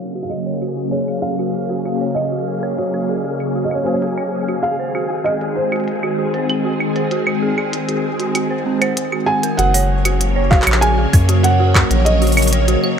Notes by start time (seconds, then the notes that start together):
Already playing: C#3 F#3 A#3 G#4 F5 G#5
0.15 F#4
0.23 F5
0.29 D#5, closed hi-hat, claves
0.46 C#5, closed hi-hat
0.62 F#4, claves
0.77 F#4, closed hi-hat
0.91 G#4 C#5, closed hi-hat
1.08 G#4, claves
1.22 F5
1.39 F#4, closed hi-hat, claves
1.54 closed hi-hat
1.70 F#4
1.85 F#4, claves
2.01 C#5, closed hi-hat
2.15 D#5, closed hi-hat, claves
2.32 F#4
2.63 C#5, claves
2.77 F#4 C#5, closed hi-hat
2.94 F#4, closed hi-hat, claves
3.09 G#4
3.25 G#4
3.40 closed hi-hat, claves
3.56 F#4
3.64 D#5
3.71 C#5, claves
3.83 F#4 C5, closed hi-hat
3.92 C#5
3.97 closed hi-hat
4.02 F#4, closed hi-hat
4.07 closed hi-hat
4.18 C#5, claves
4.48 F#4, closed hi-hat, claves
4.63 D#3 G#3 C4 G#4 F5, closed hi-hat
4.79 C5
4.95 F#4, claves
5.10 F#4
5.24 G#4 D#5, closed hi-hat, claves
5.41 G#4, closed hi-hat
5.55 C5
5.72 F#4, closed hi-hat, claves
5.76 closed hi-hat
5.80 closed hi-hat
5.84 closed hi-hat
5.88 closed hi-hat
5.92 closed hi-hat
5.95 closed hi-hat
5.99 closed hi-hat, claves
6.03 F#4
6.19 F#4
6.34 C5, closed hi-hat
6.49 closed hi-hat, claves
6.65 F#4
6.80 claves
6.96 C5, closed hi-hat
7.11 F#4, closed hi-hat
7.27 F#4, claves
7.42 G#4
7.58 G#4, claves
7.73 closed hi-hat
7.89 F#4, closed hi-hat
8.20 F#4, closed hi-hat
8.35 F#4, closed hi-hat, claves
8.50 C5
8.66 C4
8.81 C5, closed hi-hat, claves
8.97 closed hi-hat
9.12 F#4, claves
9.26 F#5 G#5
9.43 A#4, closed hi-hat
9.57 F#1 C#3 F#3 A#3 F#4 C#5 F#5, closed hi-hat
9.74 C#5, open hi-hat
10.05 F#4, closed hi-hat, claves
10.21 closed hi-hat
10.36 C#5
10.51 F#4 F5, kick, clap
10.62 clap
10.67 A#1 F#4, closed hi-hat, claves
10.72 clap
10.81 G#4 G#5, closed hi-hat
10.98 G#4
11.13 F#2, kick, open hi-hat, claves
11.29 F#4, closed hi-hat
11.43 F#5, closed hi-hat
11.60 F#4
11.75 F#4, kick, clap, claves
11.91 A#1 C#5, closed hi-hat
12.05 D#5, closed hi-hat
12.22 F#4, open hi-hat
12.27 open hi-hat
12.32 open hi-hat
12.37 open hi-hat, claves
12.42 open hi-hat
12.47 open hi-hat
12.53 C#5, closed hi-hat
12.68 F#4, closed hi-hat
12.84 F#4, claves